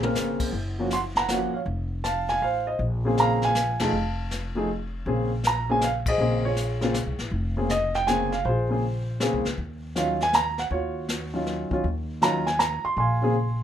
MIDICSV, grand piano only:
0, 0, Header, 1, 2, 480
1, 0, Start_track
1, 0, Key_signature, -5, "minor"
1, 0, Tempo, 376884
1, 681, Time_signature, 3, 2, 24, 8
1, 17362, End_track
2, 0, Start_track
2, 0, Title_t, "Grand piano"
2, 0, Program_c, 0, 0
2, 0, Note_on_c, 0, 77, 64
2, 0, Note_on_c, 0, 82, 98
2, 36, Note_on_c, 0, 49, 57
2, 40, Note_on_c, 0, 58, 50
2, 52, Note_on_c, 0, 60, 52
2, 57, Note_on_c, 0, 70, 66
2, 162, Note_off_c, 0, 82, 0
2, 171, Note_off_c, 0, 77, 0
2, 649, Note_off_c, 0, 49, 0
2, 651, Note_off_c, 0, 58, 0
2, 657, Note_off_c, 0, 60, 0
2, 660, Note_off_c, 0, 70, 0
2, 1006, Note_on_c, 0, 53, 60
2, 1013, Note_on_c, 0, 58, 56
2, 1014, Note_on_c, 0, 61, 56
2, 1025, Note_on_c, 0, 66, 66
2, 1151, Note_off_c, 0, 53, 0
2, 1154, Note_off_c, 0, 58, 0
2, 1155, Note_off_c, 0, 61, 0
2, 1160, Note_off_c, 0, 66, 0
2, 1183, Note_on_c, 0, 84, 88
2, 1204, Note_on_c, 0, 78, 67
2, 1252, Note_off_c, 0, 84, 0
2, 1271, Note_off_c, 0, 78, 0
2, 1490, Note_on_c, 0, 82, 84
2, 1512, Note_on_c, 0, 78, 67
2, 1629, Note_off_c, 0, 78, 0
2, 1648, Note_on_c, 0, 78, 75
2, 1654, Note_off_c, 0, 82, 0
2, 1657, Note_on_c, 0, 53, 55
2, 1662, Note_on_c, 0, 58, 53
2, 1669, Note_on_c, 0, 61, 53
2, 1676, Note_on_c, 0, 66, 60
2, 1679, Note_on_c, 0, 73, 62
2, 1934, Note_off_c, 0, 53, 0
2, 1936, Note_off_c, 0, 58, 0
2, 1940, Note_off_c, 0, 61, 0
2, 1943, Note_off_c, 0, 66, 0
2, 1956, Note_off_c, 0, 73, 0
2, 1959, Note_on_c, 0, 77, 59
2, 1970, Note_off_c, 0, 78, 0
2, 1989, Note_on_c, 0, 73, 51
2, 2023, Note_off_c, 0, 77, 0
2, 2053, Note_off_c, 0, 73, 0
2, 2598, Note_on_c, 0, 81, 93
2, 2627, Note_on_c, 0, 77, 73
2, 2910, Note_off_c, 0, 77, 0
2, 2919, Note_on_c, 0, 80, 88
2, 2926, Note_off_c, 0, 81, 0
2, 2951, Note_on_c, 0, 77, 69
2, 3067, Note_off_c, 0, 77, 0
2, 3086, Note_on_c, 0, 77, 81
2, 3090, Note_off_c, 0, 80, 0
2, 3110, Note_on_c, 0, 72, 63
2, 3392, Note_off_c, 0, 72, 0
2, 3402, Note_on_c, 0, 75, 63
2, 3410, Note_off_c, 0, 77, 0
2, 3420, Note_on_c, 0, 72, 49
2, 3555, Note_off_c, 0, 75, 0
2, 3565, Note_off_c, 0, 72, 0
2, 3881, Note_on_c, 0, 49, 66
2, 3889, Note_on_c, 0, 58, 60
2, 3899, Note_on_c, 0, 60, 63
2, 3906, Note_on_c, 0, 68, 74
2, 4074, Note_on_c, 0, 82, 95
2, 4085, Note_on_c, 0, 77, 74
2, 4355, Note_off_c, 0, 82, 0
2, 4360, Note_off_c, 0, 77, 0
2, 4390, Note_on_c, 0, 80, 92
2, 4397, Note_on_c, 0, 77, 68
2, 4494, Note_off_c, 0, 49, 0
2, 4498, Note_off_c, 0, 58, 0
2, 4503, Note_off_c, 0, 60, 0
2, 4507, Note_off_c, 0, 68, 0
2, 4824, Note_off_c, 0, 80, 0
2, 4828, Note_off_c, 0, 77, 0
2, 4840, Note_on_c, 0, 53, 62
2, 4850, Note_on_c, 0, 57, 57
2, 4856, Note_on_c, 0, 63, 58
2, 4862, Note_on_c, 0, 81, 80
2, 4866, Note_on_c, 0, 68, 68
2, 4885, Note_on_c, 0, 77, 61
2, 4990, Note_off_c, 0, 53, 0
2, 4995, Note_off_c, 0, 57, 0
2, 4998, Note_off_c, 0, 63, 0
2, 5003, Note_off_c, 0, 68, 0
2, 5798, Note_on_c, 0, 53, 60
2, 5804, Note_on_c, 0, 57, 58
2, 5815, Note_on_c, 0, 63, 57
2, 5819, Note_on_c, 0, 68, 69
2, 5927, Note_off_c, 0, 81, 0
2, 5939, Note_off_c, 0, 77, 0
2, 5950, Note_off_c, 0, 53, 0
2, 5953, Note_off_c, 0, 57, 0
2, 5958, Note_off_c, 0, 63, 0
2, 5960, Note_off_c, 0, 68, 0
2, 6451, Note_on_c, 0, 49, 56
2, 6459, Note_on_c, 0, 58, 51
2, 6462, Note_on_c, 0, 60, 54
2, 6471, Note_on_c, 0, 68, 68
2, 6733, Note_off_c, 0, 49, 0
2, 6737, Note_off_c, 0, 58, 0
2, 6739, Note_off_c, 0, 60, 0
2, 6743, Note_off_c, 0, 68, 0
2, 6968, Note_on_c, 0, 82, 90
2, 7243, Note_off_c, 0, 82, 0
2, 7250, Note_on_c, 0, 49, 61
2, 7253, Note_on_c, 0, 58, 55
2, 7261, Note_on_c, 0, 60, 56
2, 7268, Note_on_c, 0, 68, 69
2, 7279, Note_on_c, 0, 80, 87
2, 7396, Note_off_c, 0, 49, 0
2, 7397, Note_off_c, 0, 58, 0
2, 7401, Note_off_c, 0, 60, 0
2, 7405, Note_off_c, 0, 68, 0
2, 7431, Note_off_c, 0, 80, 0
2, 7442, Note_on_c, 0, 77, 89
2, 7509, Note_off_c, 0, 77, 0
2, 7748, Note_on_c, 0, 75, 85
2, 7763, Note_on_c, 0, 68, 63
2, 7763, Note_on_c, 0, 72, 59
2, 7889, Note_on_c, 0, 49, 57
2, 7893, Note_off_c, 0, 68, 0
2, 7894, Note_on_c, 0, 58, 49
2, 7904, Note_on_c, 0, 60, 52
2, 7912, Note_on_c, 0, 68, 65
2, 8172, Note_off_c, 0, 49, 0
2, 8175, Note_off_c, 0, 58, 0
2, 8180, Note_off_c, 0, 60, 0
2, 8184, Note_off_c, 0, 68, 0
2, 8217, Note_on_c, 0, 73, 85
2, 8230, Note_off_c, 0, 75, 0
2, 8233, Note_on_c, 0, 65, 48
2, 8237, Note_on_c, 0, 68, 48
2, 8345, Note_off_c, 0, 72, 0
2, 8675, Note_off_c, 0, 65, 0
2, 8675, Note_on_c, 0, 49, 64
2, 8681, Note_on_c, 0, 58, 59
2, 8690, Note_on_c, 0, 60, 60
2, 8694, Note_on_c, 0, 65, 71
2, 8828, Note_off_c, 0, 49, 0
2, 8831, Note_off_c, 0, 58, 0
2, 8835, Note_off_c, 0, 60, 0
2, 8837, Note_off_c, 0, 65, 0
2, 9119, Note_off_c, 0, 73, 0
2, 9129, Note_off_c, 0, 68, 0
2, 9637, Note_on_c, 0, 49, 60
2, 9640, Note_on_c, 0, 58, 55
2, 9650, Note_on_c, 0, 60, 57
2, 9655, Note_on_c, 0, 68, 69
2, 9789, Note_off_c, 0, 49, 0
2, 9790, Note_off_c, 0, 58, 0
2, 9795, Note_off_c, 0, 60, 0
2, 9797, Note_off_c, 0, 68, 0
2, 9817, Note_on_c, 0, 75, 91
2, 10105, Note_off_c, 0, 75, 0
2, 10129, Note_on_c, 0, 79, 97
2, 10277, Note_off_c, 0, 79, 0
2, 10280, Note_on_c, 0, 80, 95
2, 10283, Note_on_c, 0, 49, 61
2, 10295, Note_on_c, 0, 58, 57
2, 10303, Note_on_c, 0, 60, 56
2, 10307, Note_on_c, 0, 68, 69
2, 10568, Note_off_c, 0, 49, 0
2, 10574, Note_off_c, 0, 58, 0
2, 10578, Note_off_c, 0, 60, 0
2, 10580, Note_off_c, 0, 68, 0
2, 10601, Note_on_c, 0, 77, 82
2, 10608, Note_off_c, 0, 80, 0
2, 10755, Note_off_c, 0, 77, 0
2, 10769, Note_on_c, 0, 72, 79
2, 10811, Note_on_c, 0, 65, 56
2, 10812, Note_on_c, 0, 68, 54
2, 11074, Note_on_c, 0, 49, 54
2, 11079, Note_off_c, 0, 68, 0
2, 11081, Note_on_c, 0, 58, 49
2, 11087, Note_on_c, 0, 60, 50
2, 11098, Note_on_c, 0, 68, 62
2, 11227, Note_off_c, 0, 49, 0
2, 11230, Note_off_c, 0, 58, 0
2, 11233, Note_off_c, 0, 60, 0
2, 11239, Note_off_c, 0, 68, 0
2, 11676, Note_off_c, 0, 72, 0
2, 11697, Note_off_c, 0, 65, 0
2, 11720, Note_on_c, 0, 49, 64
2, 11728, Note_on_c, 0, 58, 59
2, 11737, Note_on_c, 0, 60, 58
2, 11746, Note_on_c, 0, 68, 66
2, 12006, Note_off_c, 0, 49, 0
2, 12010, Note_off_c, 0, 58, 0
2, 12015, Note_off_c, 0, 60, 0
2, 12019, Note_off_c, 0, 68, 0
2, 12679, Note_on_c, 0, 51, 64
2, 12683, Note_on_c, 0, 54, 56
2, 12692, Note_on_c, 0, 61, 60
2, 12700, Note_on_c, 0, 65, 70
2, 12709, Note_on_c, 0, 77, 83
2, 12965, Note_off_c, 0, 51, 0
2, 12967, Note_off_c, 0, 54, 0
2, 12971, Note_off_c, 0, 61, 0
2, 12976, Note_off_c, 0, 65, 0
2, 12990, Note_off_c, 0, 77, 0
2, 13026, Note_on_c, 0, 80, 96
2, 13165, Note_off_c, 0, 80, 0
2, 13179, Note_on_c, 0, 82, 98
2, 13492, Note_on_c, 0, 78, 84
2, 13496, Note_off_c, 0, 82, 0
2, 13556, Note_off_c, 0, 78, 0
2, 13648, Note_on_c, 0, 73, 75
2, 13675, Note_on_c, 0, 65, 54
2, 13675, Note_on_c, 0, 66, 57
2, 14438, Note_on_c, 0, 51, 62
2, 14445, Note_off_c, 0, 65, 0
2, 14448, Note_on_c, 0, 54, 55
2, 14457, Note_on_c, 0, 61, 51
2, 14464, Note_on_c, 0, 65, 65
2, 14554, Note_off_c, 0, 73, 0
2, 14568, Note_off_c, 0, 66, 0
2, 14886, Note_off_c, 0, 51, 0
2, 14891, Note_off_c, 0, 54, 0
2, 14896, Note_off_c, 0, 61, 0
2, 14899, Note_off_c, 0, 65, 0
2, 14913, Note_on_c, 0, 51, 60
2, 14919, Note_on_c, 0, 54, 55
2, 14927, Note_on_c, 0, 61, 58
2, 14938, Note_on_c, 0, 65, 71
2, 15064, Note_off_c, 0, 51, 0
2, 15067, Note_off_c, 0, 54, 0
2, 15071, Note_off_c, 0, 61, 0
2, 15076, Note_off_c, 0, 65, 0
2, 15558, Note_on_c, 0, 51, 64
2, 15566, Note_on_c, 0, 54, 58
2, 15573, Note_on_c, 0, 61, 57
2, 15573, Note_on_c, 0, 82, 92
2, 15582, Note_on_c, 0, 65, 70
2, 15843, Note_off_c, 0, 51, 0
2, 15847, Note_off_c, 0, 54, 0
2, 15851, Note_off_c, 0, 61, 0
2, 15855, Note_off_c, 0, 65, 0
2, 15877, Note_on_c, 0, 80, 80
2, 15891, Note_off_c, 0, 82, 0
2, 16030, Note_off_c, 0, 80, 0
2, 16037, Note_on_c, 0, 82, 89
2, 16363, Note_off_c, 0, 82, 0
2, 16363, Note_on_c, 0, 84, 91
2, 16511, Note_off_c, 0, 84, 0
2, 16530, Note_on_c, 0, 84, 86
2, 16553, Note_on_c, 0, 80, 62
2, 16559, Note_on_c, 0, 77, 62
2, 16833, Note_on_c, 0, 49, 59
2, 16843, Note_on_c, 0, 58, 57
2, 16848, Note_on_c, 0, 60, 55
2, 16858, Note_on_c, 0, 68, 74
2, 16983, Note_off_c, 0, 49, 0
2, 16988, Note_off_c, 0, 58, 0
2, 16990, Note_off_c, 0, 60, 0
2, 16995, Note_off_c, 0, 68, 0
2, 17362, Note_off_c, 0, 77, 0
2, 17362, Note_off_c, 0, 80, 0
2, 17362, Note_off_c, 0, 84, 0
2, 17362, End_track
0, 0, End_of_file